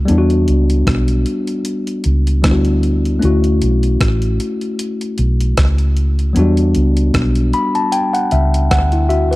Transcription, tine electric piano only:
0.05 2.38 G3 medium
0.05 2.39 B3 medium
0.09 2.40 D4 medium
0.09 0.17 E4 medium
0.18 2.45 F#4 medium
2.42 3.22 G3 medium
2.42 3.22 B3 soft
2.42 3.23 D4 soft
2.42 2.52 E4 soft
2.52 3.24 F#4 medium
3.19 6.31 A3 medium
3.19 6.32 C#4 medium
3.19 6.33 E4 medium
3.25 6.34 F#4 medium
6.33 6.42 F#3 medium
6.33 9.36 B3 medium
6.33 9.36 D4 medium
6.39 9.36 G3 medium
6.39 8.69 F#4 medium
7.54 7.74 B5 medium
7.75 7.92 A5 medium
7.92 8.13 G5 medium
8.13 8.30 F#5 medium
8.32 8.69 E5 medium
8.71 9.08 F#5 medium
8.93 9.10 E4 medium
9.09 9.30 F#4 medium
9.09 9.36 E5 medium
9.31 9.36 B4 medium

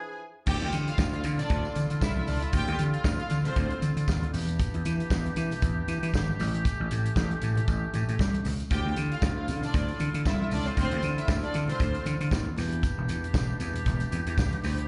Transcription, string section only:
0.00 0.17 G#4 loud
0.00 0.17 G#5 loud
0.47 0.68 G4 loud
0.47 0.68 G5 loud
0.87 0.96 F4 medium
0.87 0.96 F5 loud
1.13 1.22 F4 medium
1.13 1.22 F5 medium
1.39 1.74 D4 medium
1.39 1.74 D5 loud
2.02 2.13 E4 medium
2.02 2.13 E5 medium
2.16 2.25 E4 medium
2.16 2.25 E5 medium
2.28 2.39 D4 medium
2.28 2.39 D5 medium
2.42 2.51 E4 medium
2.42 2.51 E5 medium
2.54 2.74 G4 loud
2.54 2.74 G5 loud
2.94 3.03 F4 medium
2.94 3.03 F5 medium
3.19 3.28 F4 medium
3.19 3.28 F5 medium
3.45 3.80 C4 medium
3.45 3.80 C5 loud
8.71 8.92 G4 loud
8.71 8.91 G5 loud
9.11 9.21 F4 medium
9.11 9.20 F5 medium
9.37 9.46 F4 medium
9.37 9.46 F5 medium
9.63 9.98 D4 medium
9.63 9.98 D5 medium
10.25 10.37 E4 medium
10.25 10.37 E5 medium
10.40 10.49 E4 medium
10.40 10.49 E5 medium
10.51 10.63 D4 medium
10.51 10.63 D5 loud
10.66 10.75 C4 medium
10.66 10.75 C5 loud
10.77 10.98 C4 loud
10.77 10.98 C5 loud
11.17 11.27 E4 medium
11.17 11.27 E5 medium
11.43 11.52 D4 medium
11.43 11.52 D5 loud
11.69 12.04 C4 medium
11.69 12.04 C5 loud

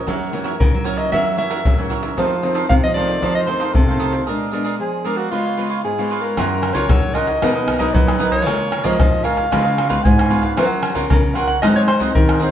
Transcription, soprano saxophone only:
0.60 0.87 A#4 medium
0.86 0.99 C#5 medium
0.98 1.12 D#5 loud
1.12 1.37 E5 loud
1.38 1.87 E5 medium
2.70 2.76 F5 medium
2.84 2.89 D#5 medium
2.94 3.32 D5 loud
3.35 3.41 D#5 medium
3.47 3.76 C5 medium
3.74 4.14 A4 medium
4.81 5.07 G#4 medium
5.05 5.18 A#4 medium
5.17 5.31 F#4 medium
5.31 5.81 F4 medium
5.84 6.23 G#4 medium
6.22 6.76 A#4 medium
6.74 7.16 C#5 medium
7.15 7.79 D#5 loud
7.79 7.96 D#5 medium
7.94 8.31 B4 medium
8.32 8.86 C#5 medium
8.85 9.26 D#5 loud
9.24 9.89 F5 loud
9.90 10.06 F5 loud
10.04 10.44 G#5 loud
11.10 11.37 A#4 medium
11.35 11.47 F#5 medium
11.47 11.61 F#5 loud
11.62 11.68 D#5 medium
11.76 11.82 C#5 medium
11.88 12.00 C5 medium
12.15 12.51 A#4 loud

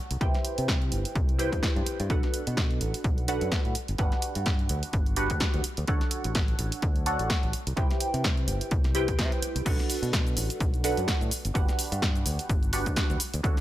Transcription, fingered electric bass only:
0.11 0.20 C2 medium
0.58 0.90 C3 medium
0.92 1.03 G1 medium
1.16 1.49 C2 medium
1.52 1.61 G2 medium
1.76 1.85 G2 medium
1.86 muted fingered electric bass stroke soft
2.00 2.09 G2 medium
2.10 2.21 B1 medium
2.47 2.79 B2 medium
2.81 2.92 A1 medium
3.04 3.38 B1 medium
3.42 3.50 F#2 medium
3.65 3.74 A2 medium
3.89 3.98 G1 medium
4.36 4.67 G2 medium
4.70 4.81 D2 medium
4.93 5.27 G1 medium
5.30 5.39 D2 medium
5.54 5.63 D2 medium
5.65 muted fingered electric bass stroke soft
5.78 5.87 D2 medium
5.88 5.99 D2 medium
6.25 6.56 A1 medium
6.59 6.70 A1 medium
6.83 7.16 D2 medium
7.19 7.28 A1 medium
7.43 7.52 A1 medium
7.67 7.76 C2 medium
7.77 7.88 C2 medium
8.14 8.45 C3 medium
8.48 8.59 G1 medium
8.71 9.20 C2 medium
9.19 9.30 C3 medium
9.42 muted fingered electric bass stroke soft
9.56 9.64 C2 medium
9.66 9.77 B1 medium
10.02 10.34 B2 medium
10.37 10.48 A1 medium
10.61 10.94 B1 medium
10.98 11.06 F#2 medium
11.21 11.30 A2 medium
11.45 11.54 G1 medium
11.55 11.66 G1 loud
11.92 12.23 G2 medium
12.26 12.37 D2 medium
12.50 12.83 G1 medium
12.87 12.95 D2 medium
13.10 13.19 D2 medium
13.34 13.43 D2 medium

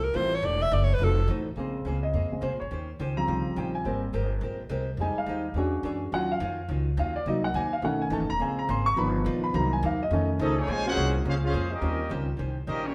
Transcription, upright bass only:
0.00 0.13 C2 medium
0.14 0.42 A1 loud
0.42 0.70 E1 loud
0.72 0.98 F#1 loud
0.99 1.27 F1 loud
1.28 1.55 A1 loud
1.56 1.84 A#1 medium
1.85 2.13 C#2 medium
2.13 2.30 F2 medium
2.31 muted upright bass stroke soft
2.42 2.52 C2 medium
2.52 2.61 A#1 medium
2.61 2.70 G#1 medium
2.71 2.98 D#2 medium
3.00 3.27 C#2 medium
3.28 3.44 C2 medium
3.47 muted upright bass stroke soft
3.56 3.84 A#1 medium
3.85 4.13 G#1 medium
4.14 4.40 G1 loud
4.41 4.69 A#1 loud
4.69 4.97 C2 loud
4.97 5.14 F2 medium
5.15 muted upright bass stroke soft
5.26 5.53 D#2 medium
5.54 5.82 E2 medium
5.83 6.11 F#2 medium
6.12 6.40 D#2 medium
6.40 6.68 F2 loud
6.69 6.97 C#2 loud
6.97 7.25 D#2 loud
7.26 7.54 C2 medium
7.54 7.82 D#2 loud
7.82 8.10 B1 medium
8.10 8.22 A1 loud
8.20 8.30 F#1 medium
8.30 8.39 D#1 medium
8.40 8.68 A#1 medium
8.69 8.96 G#1 loud
8.97 9.25 G1 loud
9.26 9.53 A#1 loud
9.54 9.82 C2 loud
9.83 10.10 D#2 loud
10.11 10.38 F2 medium
10.39 10.67 C#2 loud
10.68 10.96 A#1 medium
10.97 11.24 C2 loud
11.25 11.53 C#2 loud
11.54 11.81 F2 loud
11.82 12.09 D#2 medium
12.11 12.38 C#2 loud
12.39 12.66 C2 medium
12.67 12.95 A#1 loud

